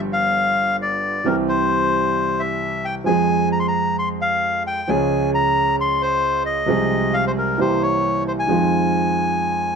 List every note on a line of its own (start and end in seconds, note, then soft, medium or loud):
0.00 1.16 G1 medium
0.00 1.16 G2 medium
0.00 1.15 F3 medium
0.00 1.16 B3 medium
0.00 1.17 D4 medium
0.00 1.17 G4 medium
0.13 0.76 F5 medium
0.82 1.28 D5 medium
1.24 2.98 C2 medium
1.24 2.98 C3 medium
1.24 2.97 E3 medium
1.24 2.98 G3 medium
1.24 2.99 C4 medium
1.24 2.99 G4 medium
1.24 1.36 A#4 medium
1.48 2.42 C5 medium
2.40 2.86 E5 medium
2.85 2.95 G5 medium
3.04 4.79 F2 medium
3.04 3.06 F3 medium
3.04 4.79 F3 medium
3.04 4.79 G#3 medium
3.04 4.80 C4 soft
3.04 3.49 G#5 medium
3.08 4.80 G#4 medium
3.52 3.59 A#5 medium
3.60 3.67 C6 medium
3.68 3.96 A#5 medium
3.99 4.09 C6 medium
4.21 4.63 F5 medium
4.67 4.90 G5 medium
4.88 6.60 C#2 medium
4.88 6.60 C#3 medium
4.88 6.59 F3 medium
4.88 6.59 G#3 medium
4.88 6.60 C#4 medium
4.88 6.61 G#4 medium
4.88 5.30 G#5 medium
5.35 5.76 A#5 loud
5.81 6.03 C6 medium
6.02 6.43 C5 medium
6.46 7.15 D#5 medium
6.67 7.54 C2 medium
6.67 7.54 C3 medium
6.67 7.53 F3 medium
6.67 7.54 G#3 medium
6.67 7.54 C4 medium
6.67 7.55 G#4 medium
7.14 7.25 F5 medium
7.27 7.32 C5 medium
7.38 7.60 A#4 medium
7.58 8.45 C2 medium
7.58 8.44 C3 medium
7.58 8.43 E3 medium
7.58 8.44 A#3 soft
7.58 8.45 C4 soft
7.58 7.83 C5 medium
7.62 8.45 G4 medium
7.83 8.24 C#5 medium
8.28 8.33 C5 medium
8.39 9.76 G#5 loud
8.47 9.76 F2 medium
8.47 9.76 D#3 medium
8.47 9.76 F3 medium
8.47 9.76 G#3 medium
8.47 9.76 C4 medium
8.51 9.76 F4 medium